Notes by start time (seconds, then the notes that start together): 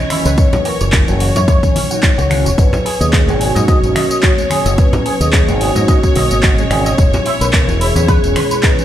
Already playing: C#5 D#5
0.09 A#2 E3 F#3 C#4 E4, finger snap, open hi-hat, high conga
0.25 C#2 B4, closed hi-hat, tambourine
0.38 C#5, kick, closed hi-hat, tambourine
0.53 closed hi-hat, tambourine, low conga
0.59 B4
0.65 F#4 A#4, open hi-hat
0.80 F#1 A#2 E3 F#3 C#4 C#5, closed hi-hat, tambourine
0.92 kick, clap, closed hi-hat, tambourine
1.08 F#1 F#3, closed hi-hat, tambourine
1.20 F#4 C#5, open hi-hat
1.36 F#2 C#5, closed hi-hat, tambourine, low conga
1.48 C#5, kick, closed hi-hat, tambourine
1.63 A#2 E3 F#3 C#4, kick, closed hi-hat, tambourine
1.75 C#4, open hi-hat, high conga
1.90 A#2 E3 F#3 D#4 F#4, closed hi-hat, tambourine
2.03 F#4 C#5, kick, clap, closed hi-hat, tambourine
2.18 C#2 F#4, closed hi-hat, tambourine
2.30 A#2 E3 F#3 C#4 F#5, finger snap, open hi-hat, high conga
2.45 E1 F#4, closed hi-hat, tambourine
2.58 G#1 B4 C#5, kick, closed hi-hat, tambourine
2.73 closed hi-hat, tambourine, low conga
2.85 G#4, open hi-hat
3.00 D#2 B2 F#3 A#3 C#4 G#4 D#5, closed hi-hat, tambourine
3.13 kick, clap, closed hi-hat, tambourine
3.28 G#1 G#3, closed hi-hat, tambourine
3.40 F#4 G#4, open hi-hat
3.55 G#2 D#5, closed hi-hat, tambourine, low conga
3.68 F#4 D#5, kick, closed hi-hat, tambourine
3.82 G#1 B2 F#3 A#3 C#4, closed hi-hat, tambourine
3.95 D#5, finger snap, open hi-hat, high conga
4.10 D#5, closed hi-hat, tambourine
4.23 F#4 C#5, kick, clap, closed hi-hat, tambourine
4.38 G#3, closed hi-hat, tambourine
4.50 A#2 B2 F#3 C#4 G#4, finger snap, open hi-hat, high conga
4.66 F#1 D#5, closed hi-hat, tambourine
4.78 B4, kick, closed hi-hat, tambourine
4.93 closed hi-hat, tambourine, low conga
5.05 G#4, open hi-hat
5.20 D#2 B2 F#3 A#3 C#4 G#4 D#5, closed hi-hat, tambourine
5.33 kick, clap, closed hi-hat, tambourine
5.48 G#1 G#3, closed hi-hat, tambourine
5.60 F#4 G#4, open hi-hat
5.75 G#2 D#5, closed hi-hat, tambourine, low conga
5.88 F#4 D#5, kick, closed hi-hat, tambourine
6.03 B2 F#3 A#3 C#4, kick, closed hi-hat, tambourine
6.15 B1 D#5, open hi-hat, high conga
6.31 G#1 D#5, closed hi-hat, tambourine
6.43 F#4 D#5, kick, clap, closed hi-hat, tambourine
6.58 G#3, closed hi-hat, tambourine
6.70 G#1 B2 E3 G#3 C#4 G#4, finger snap, open hi-hat, high conga
6.86 D#5, closed hi-hat, tambourine
6.98 E1 C#5, kick, closed hi-hat, tambourine
7.13 closed hi-hat, tambourine, low conga
7.26 E4, open hi-hat
7.40 B1 B2 E3 G#3 C#4 A#4 B4, closed hi-hat, tambourine
7.53 kick, clap, closed hi-hat, tambourine
7.68 E1 E3, closed hi-hat, tambourine
7.81 E4 G#4, open hi-hat
7.96 E2 B4, closed hi-hat, tambourine, low conga
8.08 G#4 B4, kick, closed hi-hat, tambourine
8.23 E1 B2 E3 G#3 C#4, closed hi-hat, tambourine
8.36 B4, finger snap, open hi-hat, high conga
8.51 B4, closed hi-hat, tambourine
8.63 D#4 B4, kick, clap, closed hi-hat, tambourine
8.79 E3, closed hi-hat, tambourine